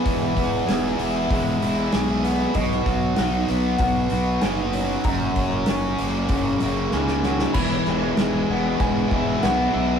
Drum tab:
CC |----------------|----------------|----------------|x---x---x---x---|
HH |o-o-o-o-o-o-o-o-|o-o-o-o-o-o-o-o-|o-o-o-o-o-o-----|----------------|
SD |----o-------o---|-o--o-------o---|----o-------oooo|-oo-o-------o---|
BD |o-o-----o-------|o-o-----o-------|o-o-----o-------|o-------o-o-----|